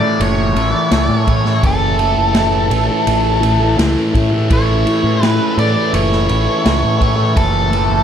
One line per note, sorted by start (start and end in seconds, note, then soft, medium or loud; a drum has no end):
0.00 0.54 A2 medium
0.00 8.03 C#3 medium
0.00 0.56 E3 medium
0.00 8.03 A3 medium
0.00 0.57 A3 medium
0.00 8.03 E4 medium
0.00 4.47 A4 medium
0.00 0.22 D5 medium
0.20 0.54 F#1 loud
0.20 1.69 C#5 medium
0.20 ride medium
0.54 0.73 A1 medium
0.54 0.89 A2 medium
0.54 0.74 E3 medium
0.54 0.71 A3 medium
0.54 ride medium
0.71 0.91 E3 medium
0.71 0.92 A3 medium
0.90 1.08 C#2 medium
0.90 1.25 A2 medium
0.90 1.27 E3 medium
0.90 1.29 A3 loud
0.90 snare loud
0.90 ride medium
1.09 1.60 A2 medium
1.25 1.60 A2 medium
1.25 1.45 E3 medium
1.25 1.41 A3 medium
1.25 kick medium
1.25 ride medium
1.42 1.63 E3 medium
1.42 1.64 A3 medium
1.42 snare soft
1.61 2.14 F#1 medium
1.61 1.97 A2 medium
1.61 1.99 E3 medium
1.61 2.00 A3 medium
1.61 kick loud
1.61 ride medium
1.66 3.76 A4 medium
1.97 2.33 A2 medium
1.97 2.18 E3 medium
1.97 2.14 A3 medium
1.97 ride soft
2.15 2.68 F#1 medium
2.15 2.34 E3 soft
2.15 2.36 A3 medium
2.33 2.69 A2 medium
2.33 2.71 E3 medium
2.33 2.73 A3 medium
2.33 snare loud
2.33 ride medium
2.69 2.88 A1 medium
2.69 3.41 A2 medium
2.69 2.91 E3 medium
2.69 2.88 A3 medium
2.69 ride medium
2.88 3.42 E3 medium
2.88 3.44 A3 medium
3.07 3.75 A1 medium
3.07 ride medium
3.41 3.77 A2 medium
3.41 3.63 E3 medium
3.41 3.59 A3 medium
3.41 ride medium
3.60 3.78 E3 soft
3.60 3.80 A3 medium
3.77 3.95 C#2 medium
3.77 4.14 A2 medium
3.77 4.15 E3 medium
3.77 4.17 A3 medium
3.77 snare medium
3.77 ride medium
4.14 4.49 A2 medium
4.14 4.48 A2 medium
4.14 4.34 E3 medium
4.14 4.31 A3 medium
4.14 kick medium
4.14 ride medium
4.32 4.51 E3 soft
4.32 4.53 A3 medium
4.49 4.84 A1 medium
4.49 4.84 A2 medium
4.49 4.86 E3 medium
4.49 8.03 B4 medium
4.49 kick loud
4.49 ride medium
4.53 4.88 A3 medium
4.53 5.24 C#5 medium
4.85 5.20 A2 medium
4.85 5.07 E3 medium
4.85 5.03 A3 medium
4.85 ride soft
5.04 5.38 A2 medium
5.04 5.22 E3 medium
5.04 5.24 A3 medium
5.21 5.57 A2 medium
5.21 5.58 E3 medium
5.21 5.60 A3 medium
5.21 5.55 B4 medium
5.21 snare medium
5.21 ride medium
5.57 6.27 A2 medium
5.57 5.74 A2 medium
5.57 5.78 E3 medium
5.57 5.74 A3 medium
5.57 5.94 D5 medium
5.57 ride medium
5.75 6.29 E3 soft
5.75 6.31 A3 medium
5.93 6.27 F#1 medium
5.93 7.41 C#5 medium
5.93 ride medium
6.12 snare soft
6.28 6.46 A1 medium
6.28 6.63 A2 medium
6.28 6.48 E3 medium
6.28 6.45 A3 medium
6.28 ride soft
6.45 6.65 E3 medium
6.45 6.66 A3 medium
6.63 6.82 C#2 medium
6.63 6.98 A2 medium
6.63 7.00 E3 medium
6.63 7.02 A3 medium
6.63 snare medium
6.63 ride medium
6.83 7.34 A2 medium
6.99 7.34 A2 medium
6.99 7.19 E3 medium
6.99 7.15 A3 medium
6.99 kick medium
6.99 ride medium
7.16 7.37 E3 soft
7.16 7.38 A3 medium
7.34 7.87 F#1 medium
7.34 7.71 A2 medium
7.34 7.73 E3 medium
7.34 7.74 A3 loud
7.34 8.03 A4 medium
7.34 kick loud
7.34 ride medium
7.71 8.03 A2 medium
7.71 7.93 E3 medium
7.71 7.90 A3 medium
7.71 ride medium
7.90 8.03 F#1 medium
7.90 8.03 E3 soft
7.90 8.03 A3 medium